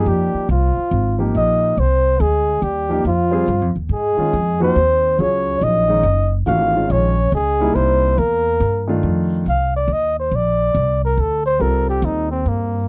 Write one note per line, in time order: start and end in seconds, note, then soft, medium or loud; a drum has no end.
0.00 0.45 F3 medium
0.00 0.46 A#3 medium
0.00 0.46 D#4 medium
0.00 0.46 G4 medium
0.06 0.32 F2 medium
0.06 0.50 G3 medium
0.06 0.49 G4 medium
0.34 muted upright bass stroke soft
0.49 0.75 C2 medium
0.49 1.16 F3 medium
0.49 1.16 F4 medium
0.77 muted upright bass stroke soft
0.91 1.33 G#1 medium
1.18 1.73 F3 medium
1.18 1.74 A#3 medium
1.18 1.74 D#4 medium
1.18 1.74 G4 medium
1.35 1.76 A#1 medium
1.35 1.79 D#4 medium
1.35 1.81 D#5 medium
1.77 2.19 C2 medium
1.77 2.22 C4 medium
1.77 2.22 C5 medium
2.20 2.61 D2 medium
2.20 2.65 G#3 medium
2.20 2.65 G#4 medium
2.62 3.04 D#2 medium
2.62 3.05 G3 medium
2.62 3.05 G4 medium
2.89 3.03 F3 medium
2.89 3.03 A#3 medium
2.89 3.04 D#4 medium
2.89 3.04 G4 medium
3.05 3.46 F2 medium
3.05 3.72 F3 medium
3.05 3.73 F4 medium
3.31 3.45 G3 medium
3.31 3.46 C4 medium
3.31 3.46 F4 medium
3.31 3.46 G#4 medium
3.48 3.61 G2 medium
3.61 3.75 F2 soft
3.76 3.89 D#2 medium
3.89 4.16 G#2 medium
3.89 4.58 G#3 medium
3.89 4.58 G#4 medium
4.17 4.31 D#3 medium
4.17 4.32 G#3 medium
4.17 4.32 C#4 medium
4.17 4.32 F4 medium
4.17 muted upright bass stroke soft
4.33 4.75 F2 medium
4.60 4.74 F3 medium
4.60 4.74 A#3 medium
4.60 5.20 C4 medium
4.60 4.75 D#4 medium
4.60 4.75 F#4 medium
4.60 5.22 C5 loud
4.76 5.17 D#2 medium
5.18 5.60 C#2 medium
5.18 5.84 F#3 medium
5.18 5.62 C#4 medium
5.18 5.84 C#4 soft
5.18 5.84 F4 soft
5.18 5.84 G#4 medium
5.18 5.65 C#5 medium
5.61 6.03 A#1 medium
5.61 6.32 D#4 medium
5.61 6.33 D#5 loud
5.88 6.02 D#3 medium
5.88 6.02 G#3 medium
5.88 6.03 C#4 medium
5.88 6.03 D#4 medium
6.03 6.45 F#1 medium
6.46 6.88 G#1 medium
6.46 6.71 E3 medium
6.46 6.72 A3 soft
6.46 6.72 D4 medium
6.46 6.90 F4 medium
6.46 6.72 F#4 medium
6.46 6.93 F5 loud
6.75 7.12 D#3 medium
6.75 7.12 G#3 medium
6.75 7.13 C#4 medium
6.75 7.13 F4 medium
6.89 7.31 A#1 medium
6.89 7.31 C#4 medium
6.89 7.33 C#5 loud
7.32 7.74 C#2 medium
7.32 7.77 G#3 medium
7.32 7.76 G#4 loud
7.60 8.15 G3 medium
7.60 8.15 A#3 medium
7.60 8.15 D#4 medium
7.60 8.15 E4 medium
7.75 8.17 C2 medium
7.75 8.19 C4 medium
7.75 8.20 C5 medium
8.18 8.59 E2 medium
8.18 8.88 A#3 medium
8.18 8.89 A#4 medium
8.60 9.02 G2 medium
8.88 9.43 D#3 medium
8.88 9.43 A3 medium
8.88 9.43 D4 medium
8.88 9.43 F4 medium
9.03 9.45 F2 medium
9.46 9.87 C2 medium
9.46 9.73 F5 medium
9.76 9.94 D5 medium
9.88 10.30 D#2 medium
9.93 10.18 D#5 medium
10.19 10.37 C5 medium
10.31 10.73 A#1 medium
10.31 11.04 D5 medium
10.75 11.16 C2 medium
11.05 11.22 A#4 medium
11.17 11.59 D2 medium
11.17 11.45 A4 medium
11.45 11.63 C5 loud
11.59 12.02 C2 medium
11.59 12.79 G3 medium
11.59 12.79 C4 medium
11.59 12.79 F4 medium
11.59 12.80 A4 medium
11.59 11.88 A#4 medium
11.90 12.06 G4 medium
12.02 12.44 D#2 medium
12.02 12.31 D#4 medium
12.31 12.49 C4 medium
12.46 12.87 G2 medium
12.46 12.88 A#3 medium